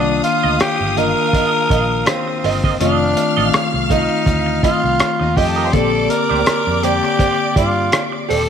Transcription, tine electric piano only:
Already playing: D#3 A#3 D4 F4
0.97 D#3 A#3 D4 F4
2.81 D#3 A3 C4 F4
3.37 D#3 A3 C4 F4
3.91 A3 C4 D#4 F4
4.64 D#3 A3 C4 F4
5.73 D3 A#3 C4 G4
6.83 D3 A#3 C4 G4

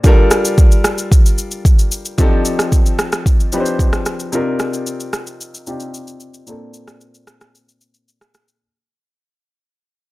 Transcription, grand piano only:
0.03 G3 D4 F4 A4 A#4
2.18 F3 C4 D4 D#4 G4 A4
3.52 F3 C4 D4 D#4 G4 B4
3.60 C5
4.32 C3 C4 D4 D#4 F4 A#4
5.67 C3 C4 D4 D#4 F4 G4
6.46 A#2 A#3 C4 D4 A4

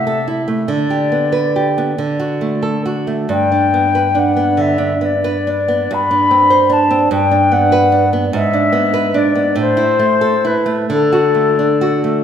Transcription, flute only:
Already playing: E5
0.71 D5
3.31 G5
4.18 F#5
4.61 E5
5.05 D5
5.93 B5
6.72 A5
7.12 G5
7.52 F#5
8.34 E5
9.17 D5
9.60 C5
10.46 B4
10.91 A4

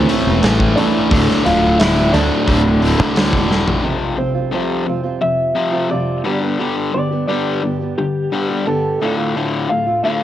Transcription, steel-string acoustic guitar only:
3.83 F2 C3 F3 G3 C4 F4
4.17 F3 G3 C4 F4
4.34 F3 G3 C4 F4
4.51 F2 C3 F3 G3 C4 F4
4.86 F3 G3 C4 F4
5.03 F3 G3 C4 F4
5.55 F3 G3 C4 F4
5.71 F3 G3 C4 F4
5.89 F2 C3 F3 G3 C4 F4
6.24 G2 D3 G3 B3 D4 G4
6.41 G3 B3 D4 G4
6.58 G2 D3 G3 B3 D4 G4
6.93 G3 B3 D4 G4
7.11 G3 B3 D4 G4
7.27 G2 D3 G3 B3 D4 G4
7.62 G3 B3 D4 G4
7.79 G3 B3 D4 G4
8.31 G3 B3 D4 G4
8.49 G3 B3 D4 G4
8.65 G2 D3 G3 B3 D4 G4
9.00 D2 A2 D3 A3 F4
9.17 D3 A3 F4
9.34 D2 A2 D3 A3 F4
9.69 A2 D3 A3 F4
9.86 D3 A3 F4
10.04 D2 A2 D3 A3 F4

